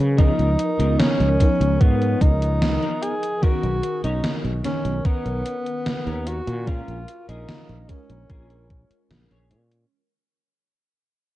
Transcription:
0.00 0.31 C#3 loud
0.00 0.13 F#3 loud
0.00 0.14 B3 medium
0.00 0.14 G#4 loud
0.17 1.35 F3 medium
0.17 1.35 B3 medium
0.17 0.49 B3 loud
0.17 0.49 D#4 loud
0.17 1.01 D#4 loud
0.17 1.36 D#4 medium
0.17 0.49 F4 medium
0.17 0.49 A#4 loud
0.17 1.36 A#4 loud
0.17 kick loud
0.17 closed hi-hat soft
0.39 0.55 C#2 medium
0.39 closed hi-hat soft
0.59 closed hi-hat medium
0.79 0.96 C#2 medium
0.79 1.10 B3 medium
0.79 1.10 D#4 medium
0.79 1.10 F4 medium
0.79 1.10 A#4 medium
0.79 closed hi-hat medium
1.00 1.82 C#4 loud
1.00 snare loud
1.00 closed hi-hat soft
1.20 1.36 C#2 medium
1.20 closed hi-hat soft
1.39 3.37 F3 medium
1.39 3.38 B3 medium
1.39 3.38 D#4 medium
1.39 3.39 A#4 loud
1.39 muted clean electric guitar stroke soft
1.39 kick medium
1.39 closed hi-hat medium
1.60 1.77 C#2 loud
1.60 closed hi-hat soft
1.80 2.14 G#2 medium
1.80 2.31 B3 medium
1.80 2.23 B3 loud
1.80 2.32 D#4 medium
1.80 2.32 F4 medium
1.80 2.32 C#5 medium
1.80 kick loud
1.80 closed hi-hat soft
2.02 closed hi-hat soft
2.21 2.76 C#2 medium
2.21 3.04 D#4 loud
2.21 kick loud
2.21 closed hi-hat medium
2.42 closed hi-hat soft
2.62 snare loud
2.62 closed hi-hat medium
2.82 3.13 B3 medium
2.82 3.13 D#4 medium
2.82 3.13 F4 medium
2.82 3.13 A#4 loud
2.82 closed hi-hat soft
3.03 3.44 G#4 loud
3.03 closed hi-hat medium
3.23 closed hi-hat medium
3.41 4.59 D#3 medium
3.41 4.60 B3 medium
3.41 3.73 C#4 loud
3.41 4.60 C#4 medium
3.41 3.74 D#4 loud
3.41 4.03 F#4 loud
3.41 3.74 A#4 loud
3.41 4.60 A#4 loud
3.41 muted fretless electric bass stroke soft
3.41 kick loud
3.41 closed hi-hat medium
3.63 3.80 B1 medium
3.63 closed hi-hat soft
3.83 closed hi-hat medium
4.04 4.20 B1 medium
4.04 4.34 C#4 medium
4.04 4.35 D#4 loud
4.04 4.35 D#4 medium
4.04 4.35 C#5 loud
4.04 closed hi-hat medium
4.24 snare loud
4.24 closed hi-hat medium
4.44 4.61 B1 medium
4.44 closed hi-hat soft
4.63 6.62 D#3 loud
4.63 6.62 B3 medium
4.63 5.07 C#4 loud
4.63 6.63 C#4 medium
4.63 6.63 A#4 loud
4.63 muted clean electric guitar stroke soft
4.63 snare medium
4.63 closed hi-hat medium
4.85 5.01 B1 loud
4.85 closed hi-hat soft
5.05 6.28 B3 loud
5.05 5.56 C#4 medium
5.05 5.56 D#4 medium
5.05 5.56 A#4 loud
5.05 muted fretless electric bass stroke soft
5.05 kick loud
5.05 closed hi-hat medium
5.26 5.42 B1 medium
5.26 closed hi-hat soft
5.46 closed hi-hat medium
5.66 closed hi-hat soft
5.86 snare loud
5.86 closed hi-hat soft
6.07 6.39 D#2 loud
6.07 6.37 C#4 medium
6.07 6.37 D#4 medium
6.07 6.37 A#4 loud
6.07 closed hi-hat soft
6.27 6.69 F#4 loud
6.27 closed hi-hat medium
6.47 6.80 A#2 loud
6.47 closed hi-hat medium
6.66 7.83 G#3 medium
6.66 7.84 C#4 medium
6.66 6.98 C#4 loud
6.66 7.28 F4 loud
6.66 7.84 F4 medium
6.66 6.98 G#4 loud
6.66 6.98 A#4 loud
6.66 7.85 A#4 loud
6.66 kick loud
6.66 closed hi-hat medium
6.88 7.04 A#1 loud
6.88 closed hi-hat soft
7.08 closed hi-hat medium
7.28 7.45 A#1 medium
7.28 7.58 C#4 medium
7.28 7.91 D#4 medium
7.28 7.59 G#4 medium
7.28 7.59 A#4 loud
7.28 closed hi-hat medium
7.48 snare loud
7.48 closed hi-hat medium
7.69 7.85 A#1 medium
7.69 closed hi-hat soft
7.87 9.86 G#3 medium
7.87 9.86 C#4 medium
7.87 9.11 C#4 medium
7.87 9.87 F4 medium
7.87 9.88 A#4 loud
7.87 muted clean electric guitar stroke soft
7.87 kick medium
7.87 closed hi-hat medium
8.09 8.26 A#1 loud
8.09 closed hi-hat medium
8.29 8.84 A#1 medium
8.29 8.80 C#4 medium
8.29 8.81 G#4 medium
8.29 8.81 A#4 medium
8.29 kick loud
8.29 closed hi-hat medium
8.50 closed hi-hat soft
8.70 kick loud
8.70 closed hi-hat loud
8.90 muted fretless electric bass stroke soft
8.90 closed hi-hat medium
9.11 9.27 A#1 loud
9.11 snare loud
9.11 closed hi-hat medium
9.31 9.53 A#1 medium
9.31 9.61 C#4 medium
9.31 9.61 G#4 medium
9.31 9.62 C#5 medium
9.31 closed hi-hat soft
9.51 9.84 A#2 medium
9.51 closed hi-hat medium
9.72 closed hi-hat medium

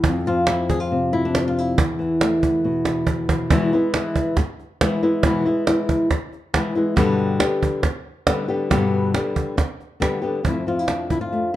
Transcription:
0.04 1.76 F2 medium
0.04 cajon bass medium
0.26 1.76 F3 medium
0.26 0.48 F4 medium
0.26 cajon slap soft
0.47 0.69 E4 medium
0.47 cajon slap loud
0.70 0.80 G#4 medium
0.70 cajon bass medium
0.80 1.13 F4 medium
0.92 1.76 C3 medium
1.13 1.35 E4 medium
1.25 1.79 D4 medium
1.35 1.46 E4 medium
1.35 cajon slap medium
1.48 1.58 F4 medium
1.57 3.07 E4 medium
1.57 cajon slap soft
1.78 3.49 E2 medium
1.78 cajon bass loud
1.99 3.48 E3 medium
1.99 cajon slap soft
2.21 3.49 A3 soft
2.21 cajon slap medium
2.43 2.86 B3 soft
2.43 cajon bass medium
2.65 3.49 B2 medium
2.85 3.30 B3 soft
2.85 cajon slap medium
3.07 3.51 E4 soft
3.07 cajon bass medium
3.29 3.51 B3 soft
3.29 cajon bass medium
3.50 3.72 E2 medium
3.50 3.72 B2 medium
3.50 3.72 E3 medium
3.50 3.73 G#3 medium
3.50 3.73 B3 medium
3.50 3.72 E4 medium
3.50 cajon bass loud
3.72 3.95 E3 medium
3.72 3.95 G#3 medium
3.72 3.94 B3 medium
3.72 3.93 E4 medium
3.72 cajon slap soft
3.94 4.38 E3 soft
3.94 4.38 G#3 medium
3.94 4.37 B3 medium
3.94 4.37 E4 medium
3.94 cajon slap loud
4.16 cajon bass medium
4.37 muted nylon-string guitar stroke medium
4.37 cajon bass loud
4.37 cajon slap soft
4.60 cajon slap soft
4.81 5.02 E3 medium
4.81 5.02 G#3 medium
4.81 5.02 B3 medium
4.81 5.02 E4 medium
4.81 cajon bass medium
4.81 cajon slap loud
5.03 5.24 E3 soft
5.03 5.24 G#3 medium
5.03 5.24 B3 medium
5.03 5.24 E4 medium
5.23 5.45 E2 medium
5.23 5.46 B2 medium
5.23 5.46 E3 medium
5.23 5.46 G#3 medium
5.23 5.45 B3 medium
5.23 5.44 E4 medium
5.23 cajon bass loud
5.46 5.68 E3 soft
5.46 5.67 G#3 medium
5.46 5.67 B3 medium
5.46 5.66 E4 medium
5.46 cajon slap soft
5.67 6.10 E3 soft
5.67 6.10 G#3 medium
5.67 6.11 B3 medium
5.67 6.10 E4 medium
5.67 cajon slap loud
5.89 cajon bass medium
6.11 muted nylon-string guitar stroke medium
6.11 cajon bass medium
6.11 cajon slap soft
6.33 cajon slap soft
6.54 6.75 E3 medium
6.54 6.75 G#3 medium
6.54 6.75 B3 medium
6.54 6.74 E4 medium
6.54 cajon bass medium
6.54 cajon slap loud
6.75 6.97 E3 soft
6.75 6.97 G#3 medium
6.75 6.97 B3 medium
6.75 6.96 E4 medium
6.96 7.39 G2 medium
6.96 7.39 B2 medium
6.96 7.40 D3 medium
6.96 7.40 G3 medium
6.96 7.39 B3 medium
6.96 7.38 G4 medium
6.96 cajon bass loud
7.19 cajon slap soft
7.40 7.83 D3 soft
7.40 7.83 G3 medium
7.40 7.83 B3 medium
7.40 7.83 G4 medium
7.40 cajon slap loud
7.63 cajon bass medium
7.83 muted nylon-string guitar stroke medium
7.83 cajon bass loud
7.83 cajon slap soft
8.27 8.48 D3 medium
8.27 8.48 G3 medium
8.27 8.47 B3 medium
8.27 8.47 G4 medium
8.27 cajon bass medium
8.27 cajon slap medium
8.48 8.70 D3 medium
8.48 8.70 G3 soft
8.48 8.70 B3 medium
8.48 8.70 G4 medium
8.70 9.13 G2 medium
8.70 9.14 B2 medium
8.70 9.14 D3 medium
8.70 9.14 G3 medium
8.70 9.14 B3 medium
8.70 9.13 G4 loud
8.70 cajon bass loud
9.14 9.57 D3 medium
9.14 9.57 G3 medium
9.14 9.57 B3 medium
9.14 9.57 G4 medium
9.14 cajon slap medium
9.36 cajon bass medium
9.57 muted nylon-string guitar stroke medium
9.57 cajon bass loud
9.57 cajon slap soft
9.80 cajon slap soft
10.00 10.21 D3 medium
10.00 10.22 G3 medium
10.00 10.22 B3 medium
10.00 10.21 G4 medium
10.00 cajon bass medium
10.00 cajon slap medium
10.22 10.44 D3 soft
10.22 10.44 G3 soft
10.22 10.44 B3 medium
10.22 10.43 G4 medium
10.44 11.56 F2 medium
10.44 10.66 F3 soft
10.44 11.32 A3 soft
10.44 10.89 C4 soft
10.44 10.68 E4 medium
10.44 cajon bass medium
10.67 11.56 F3 medium
10.67 10.79 F4 medium
10.79 11.09 E4 medium
10.88 11.54 D4 medium
10.88 cajon slap medium
11.10 11.21 E4 medium
11.10 cajon bass medium
11.21 11.54 F4 medium
11.32 11.56 A3 soft
11.32 cajon slap soft

